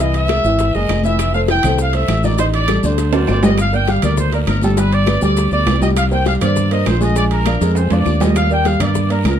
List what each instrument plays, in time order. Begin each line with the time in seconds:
Already playing: fingered electric bass C2
0.00 grand piano E3 E4 E5, trumpet section D#5, high bongo, high timbale
0.13 trumpet section E5, high bongo, high conga, high timbale, maracas
0.28 grand piano G#3 G#4 A#4, high bongo, high conga, high timbale, short guiro, claves, maracas
0.44 fingered electric bass G#1, grand piano E3 E4 E5, high bongo, high conga, short guiro, maracas
0.59 high bongo, high conga, high timbale, long guiro, maracas
0.74 fingered electric bass F#1, grand piano G#3 G#4 A#4, trumpet section D#5, high bongo, high conga, maracas
0.89 fingered electric bass F1, high bongo, low bongo, high conga, high timbale, short guiro, claves, maracas
1.04 grand piano E3 E4 E5, trumpet section E5, high conga, short guiro, maracas
1.18 high bongo, high conga, high timbale, long guiro, claves, maracas
1.34 grand piano A3 A4 C5, trumpet section F5, high bongo, high conga, maracas
1.48 grand piano E3 E4 E5, trumpet section G5, high bongo, high conga, high timbale, short guiro, maracas
1.63 fingered electric bass C2, grand piano A3 A4 C5, high conga, low conga, high timbale, short guiro, claves, maracas
1.78 trumpet section F5, high bongo, high conga, long guiro, maracas
1.93 grand piano A3 A4 C5, trumpet section E5, high bongo, high conga, high timbale, maracas
2.08 fingered electric bass A1, high bongo, low bongo, high conga, high timbale, short guiro, claves, maracas
2.23 grand piano D#3 D#4 D#5, trumpet section D5, high conga, short guiro, maracas
2.38 grand piano D#3 D#4 D#5, trumpet section C5, high bongo, high conga, high timbale, long guiro, maracas
2.54 trumpet section D5, high bongo, high conga, high timbale, maracas
2.68 grand piano G3 G4 A4, high bongo, high conga, high timbale, short guiro, claves, maracas
2.83 fingered electric bass D2, grand piano D3 D4 D5, trumpet section C5, high bongo, high conga, short guiro, maracas
2.98 high bongo, high conga, high timbale, long guiro, maracas
3.13 grand piano F#3 F#4 A#4, trumpet section D5, high bongo, high timbale, maracas
3.27 fingered electric bass G1, trumpet section D5, low bongo, high conga, high timbale, short guiro, claves, maracas
3.43 grand piano G3 G4 G5, trumpet section D#5, low bongo, high conga, low timbale, short guiro, maracas
3.57 trumpet section F5, high bongo, high conga, high timbale, long guiro, claves, maracas
3.72 grand piano A#3 A#4 D5, trumpet section G5, high bongo, high conga, maracas
3.87 grand piano G3 G4 G5, trumpet section F5, high bongo, high conga, high timbale, short guiro, maracas
4.02 fingered electric bass D2, grand piano A#3 A#4 D5, trumpet section D5, high bongo, high conga, low conga, high timbale, short guiro, claves, maracas
4.17 trumpet section C5, high bongo, high conga, low conga, long guiro, maracas
4.32 grand piano A#3 A#4 D5, trumpet section A#4, high bongo, high conga, high timbale, maracas
4.46 fingered electric bass G1, trumpet section A#4, high bongo, low bongo, high conga, high timbale, short guiro, claves, maracas
4.62 grand piano G3 G4 G5, trumpet section A4, high conga, short guiro, maracas
4.77 grand piano G3 G4 G5, trumpet section B4, high bongo, high timbale, long guiro, maracas
4.91 trumpet section D5, high bongo, high conga, high timbale, maracas
5.06 grand piano B3 B4 D5, high bongo, high conga, high timbale, short guiro, claves, maracas
5.21 fingered electric bass D2, grand piano G3 G4 G5, trumpet section D5, high bongo, high conga, short guiro, maracas
5.36 high bongo, high conga, high timbale, long guiro, maracas
5.52 fingered electric bass D2, grand piano B3 B4 D5, trumpet section D5, high bongo, high conga, maracas
5.66 fingered electric bass C2, high bongo, low bongo, high conga, high timbale, low timbale, short guiro, claves, maracas
5.82 grand piano G3 G4 G5, trumpet section D#5, high conga, short guiro, maracas
5.96 trumpet section F5, high bongo, high conga, high timbale, long guiro, claves, maracas
6.11 grand piano A#3 A#4 C5, trumpet section G5, high bongo, high conga, maracas
6.26 grand piano G3 G4 G5, trumpet section F5, high bongo, high conga, high timbale, short guiro, maracas
6.41 fingered electric bass G2, grand piano A#3 A#4 C5, trumpet section D5, high bongo, high conga, low conga, high timbale, short guiro, claves, maracas
6.56 high bongo, high conga, low conga, long guiro, maracas
6.71 grand piano A#3 A#4 C5, trumpet section D#5, high bongo, high conga, high timbale, maracas
6.86 fingered electric bass A#1, trumpet section C5, high bongo, low bongo, high conga, high timbale, low timbale, short guiro, claves, maracas
7.01 grand piano G#3 G#4 G#5, trumpet section D#5, high conga, short guiro, maracas
7.16 grand piano G#3 G#4 G#5, trumpet section D5, high bongo, high timbale, long guiro, maracas
7.31 trumpet section A#4, high bongo, high conga, high timbale, maracas
7.46 grand piano D4 D5 F5, high bongo, high conga, high timbale, short guiro, claves, maracas
7.61 fingered electric bass F2, grand piano G#3 G#4 G#5, high bongo, short guiro, maracas
7.75 trumpet section C5, high conga, high timbale, long guiro, maracas
7.91 fingered electric bass F2, grand piano D4 D5 F5, trumpet section D5, high conga, low timbale, maracas
8.06 fingered electric bass D#2, low bongo, high conga, short guiro, claves, maracas
8.20 grand piano G3 G4 G5, trumpet section D#5, low bongo, high conga, low timbale, short guiro, maracas
8.36 trumpet section F5, high bongo, high conga, high timbale, claves, maracas
8.50 grand piano A#3 A#4 D5, trumpet section G5, high bongo, high conga, maracas
8.65 grand piano G3 G4 G5, trumpet section F5, high bongo, high conga, high timbale, short guiro, maracas
8.80 fingered electric bass G2, grand piano A#3 A#4 D5, trumpet section D5, high bongo, high conga, low conga, high timbale, short guiro, claves, maracas
8.94 high bongo, high conga, low conga, long guiro, maracas
9.10 grand piano A#3 A#4 D5, trumpet section A#4, high bongo, high conga, high timbale, maracas
9.24 fingered electric bass C#2, trumpet section A#4, high bongo, low bongo, high conga, high timbale, low timbale, short guiro, claves, maracas